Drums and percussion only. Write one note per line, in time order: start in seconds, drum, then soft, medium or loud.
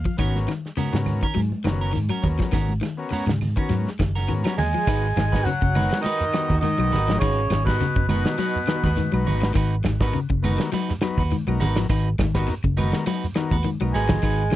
0.05 kick medium
0.05 shekere soft
0.18 kick medium
0.18 closed hi-hat medium
0.18 claves medium
0.18 shekere medium
0.35 snare soft
0.35 high conga medium
0.35 shekere soft
0.47 snare soft
0.47 closed hi-hat soft
0.47 high conga medium
0.47 claves medium
0.47 shekere medium
0.64 snare soft
0.64 shekere soft
0.77 closed hi-hat medium
0.77 high conga medium
0.77 shekere medium
0.94 snare medium
0.94 shekere soft
1.06 closed hi-hat medium
1.06 low conga medium
1.06 claves medium
1.06 shekere medium
1.23 kick medium
1.23 closed hi-hat soft
1.23 shekere soft
1.36 closed hi-hat medium
1.36 high conga medium
1.36 shekere medium
1.52 high conga medium
1.52 shekere soft
1.65 snare medium
1.65 closed hi-hat soft
1.65 high conga medium
1.65 claves medium
1.65 shekere medium
1.82 shekere soft
1.95 closed hi-hat medium
1.95 high conga medium
1.95 shekere medium
2.10 claves medium
2.10 shekere soft
2.23 kick medium
2.23 closed hi-hat medium
2.23 low conga medium
2.23 shekere medium
2.40 kick medium
2.40 snare soft
2.40 shekere soft
2.53 kick medium
2.53 snare soft
2.53 closed hi-hat medium
2.53 claves medium
2.53 shekere medium
2.69 high conga medium
2.69 shekere soft
2.83 snare soft
2.83 closed hi-hat medium
2.83 high conga medium
2.83 claves medium
2.83 shekere medium
2.99 shekere soft
3.12 closed hi-hat medium
3.12 high conga medium
3.12 shekere medium
3.29 snare medium
3.29 low conga medium
3.29 shekere soft
3.41 open hi-hat medium
3.41 low conga medium
3.41 claves medium
3.41 shekere medium
3.57 kick medium
3.57 closed hi-hat soft
3.57 shekere soft
3.71 closed hi-hat medium
3.71 high conga medium
3.71 shekere medium
3.87 snare soft
3.87 shekere soft
4.00 kick medium
4.00 snare medium
4.00 closed hi-hat medium
4.00 high conga medium
4.00 claves medium
4.00 shekere medium
4.17 snare soft
4.17 closed hi-hat soft
4.17 shekere soft
4.29 closed hi-hat medium
4.29 high conga medium
4.29 shekere medium
4.46 snare medium
4.46 closed hi-hat soft
4.46 claves medium
4.46 shekere soft
4.59 open hi-hat medium
4.59 low conga medium
4.59 shekere medium
4.75 shekere soft
4.87 kick medium
4.87 snare soft
4.87 crash medium
4.87 claves medium
4.87 shekere medium
5.04 closed hi-hat soft
5.16 snare medium
5.16 closed hi-hat medium
5.16 high conga loud
5.16 claves medium
5.16 shekere medium
5.33 kick medium
5.33 snare medium
5.33 shekere soft
5.45 closed hi-hat medium
5.45 shekere medium
5.62 kick medium
5.75 closed hi-hat medium
5.75 high conga medium
5.75 low conga medium
5.75 claves medium
5.75 shekere soft
5.91 snare medium
5.91 high conga medium
5.91 shekere medium
6.04 closed hi-hat medium
6.04 high conga medium
6.04 shekere medium
6.21 shekere medium
6.34 snare medium
6.34 closed hi-hat medium
6.34 claves medium
6.50 kick medium
6.50 closed hi-hat soft
6.50 low conga medium
6.50 shekere soft
6.63 closed hi-hat medium
6.63 high conga medium
6.63 shekere medium
6.80 closed hi-hat soft
6.80 claves medium
6.92 snare soft
6.92 closed hi-hat medium
6.92 low conga medium
6.92 shekere soft
7.09 snare medium
7.09 closed hi-hat soft
7.09 high conga medium
7.09 shekere medium
7.21 kick loud
7.21 closed hi-hat medium
7.21 claves medium
7.21 shekere medium
7.38 closed hi-hat soft
7.50 snare medium
7.50 closed hi-hat medium
7.50 high conga loud
7.50 claves medium
7.50 shekere medium
7.67 kick medium
7.67 snare medium
7.67 shekere soft
7.81 snare soft
7.81 closed hi-hat medium
7.81 shekere medium
7.96 kick medium
7.96 closed hi-hat soft
8.09 closed hi-hat medium
8.09 high conga medium
8.09 low conga medium
8.09 claves medium
8.09 shekere soft
8.26 snare medium
8.26 shekere medium
8.38 closed hi-hat medium
8.38 high conga medium
8.38 shekere medium
8.56 shekere medium
8.68 snare medium
8.68 closed hi-hat medium
8.68 claves medium
8.84 kick medium
8.84 snare soft
8.84 high conga medium
8.84 low conga medium
8.84 shekere soft
8.98 closed hi-hat medium
8.98 high conga medium
8.98 shekere medium
9.13 high conga medium
9.13 claves medium
9.27 closed hi-hat medium
9.27 low conga medium
9.27 shekere soft
9.43 snare medium
9.43 high conga medium
9.43 shekere medium
9.55 kick medium
9.55 closed hi-hat medium
9.55 claves medium
9.55 shekere medium
9.71 closed hi-hat soft
9.84 snare medium
9.84 closed hi-hat soft
9.84 high conga medium
9.84 claves medium
9.84 shekere medium
10.01 kick medium
10.01 snare medium
10.01 shekere soft
10.13 closed hi-hat medium
10.13 shekere medium
10.30 kick medium
10.43 closed hi-hat medium
10.43 high conga medium
10.43 low conga medium
10.43 claves medium
10.43 shekere soft
10.60 snare medium
10.60 shekere medium
10.73 closed hi-hat medium
10.73 high conga loud
10.73 shekere medium
10.89 snare soft
10.89 shekere medium
11.01 snare medium
11.01 closed hi-hat medium
11.01 claves medium
11.18 kick medium
11.18 closed hi-hat soft
11.18 shekere soft
11.31 closed hi-hat medium
11.31 high conga medium
11.31 shekere medium
11.47 closed hi-hat soft
11.47 high conga medium
11.47 claves medium
11.60 snare soft
11.60 closed hi-hat medium
11.60 low conga medium
11.60 shekere soft
11.76 snare medium
11.76 closed hi-hat soft
11.76 shekere medium
11.89 kick loud
11.89 closed hi-hat medium
11.89 claves medium
11.89 shekere medium
12.06 closed hi-hat soft
12.19 kick medium
12.19 snare medium
12.19 closed hi-hat medium
12.19 high conga medium
12.19 claves medium
12.19 shekere medium
12.35 kick medium
12.35 snare medium
12.35 shekere soft
12.48 snare soft
12.48 closed hi-hat medium
12.48 shekere medium
12.64 kick medium
12.64 closed hi-hat soft
12.77 open hi-hat medium
12.77 high conga medium
12.77 low conga medium
12.77 claves medium
12.77 shekere soft
12.93 snare medium
12.93 high conga medium
12.93 shekere medium
13.06 closed hi-hat medium
13.06 high conga medium
13.06 shekere medium
13.24 shekere medium
13.35 snare medium
13.35 closed hi-hat medium
13.35 claves medium
13.51 kick medium
13.51 high conga medium
13.51 shekere soft
13.64 closed hi-hat medium
13.64 high conga medium
13.64 shekere medium
13.82 high conga medium
13.82 claves medium
13.94 snare soft
13.94 closed hi-hat medium
13.94 shekere soft
14.09 kick medium
14.09 snare medium
14.09 low conga loud
14.09 shekere medium
14.22 kick loud
14.22 closed hi-hat medium
14.22 claves medium
14.22 shekere medium
14.38 closed hi-hat soft
14.52 snare medium
14.52 closed hi-hat medium
14.52 high conga medium